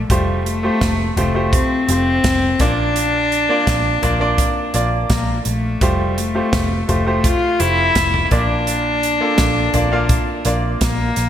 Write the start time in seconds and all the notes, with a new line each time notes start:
Already playing: A#3 D4 F4 A4 D5
0.10 F1 G3 A3 F4 G4 C5, kick, closed hi-hat
0.46 A3, closed hi-hat
0.63 A3 F4 G4 C5
0.81 F1, kick, snare, closed hi-hat
1.16 F1 A3 F4 G4 C5, closed hi-hat, floor tom
1.35 A3 F4 G4 C5
1.53 C4, kick, closed hi-hat
1.89 F1 A3 C4 F4 G4 C5, closed hi-hat
2.24 F1, kick, snare, closed hi-hat
2.60 A#1 A#2 A#3 D4 F4 D5, kick, snare, closed hi-hat
2.96 closed hi-hat
3.32 closed hi-hat
3.49 A#3 D4 F4 D5
3.67 A#1, kick, snare, closed hi-hat
4.02 A#1 A#3 D4 F4 D5, closed hi-hat, floor tom
4.20 A#3 D4 F4 D5
4.38 kick, closed hi-hat
4.74 A#1 A#3 D4 F4 D5, closed hi-hat
5.10 A#1 A#3, kick, snare, closed hi-hat
5.45 A#1 A3, closed hi-hat
5.81 F1 G3 A3 F4 G4 C5, kick, closed hi-hat
6.17 A3, closed hi-hat
6.35 A3 F4 G4 C5
6.53 F1, kick, snare, closed hi-hat
6.88 F1 A3 F4 G4 C5, closed hi-hat, floor tom
7.06 A3 F4 G4 C5
7.24 F4, kick, closed hi-hat
7.59 F1 F3 A3 E4 G4 C5, closed hi-hat
7.95 F1, kick, snare, closed hi-hat
8.14 floor tom
8.24 E4
8.31 A#1 A#2 A#3 D4 F4 D5, kick, closed hi-hat
8.67 closed hi-hat
9.03 closed hi-hat
9.21 A#3 D4 F4 A4
9.38 A#1, kick, snare, closed hi-hat
9.74 A#1 A#3 D4 F4 D5, closed hi-hat, floor tom
9.92 A#3 D4 F4 F5
10.09 kick, closed hi-hat
10.45 A#1 A#3 D4 F4 D5, closed hi-hat
10.81 A#1 A#3, kick, snare, closed hi-hat
11.16 A#1, snare, closed hi-hat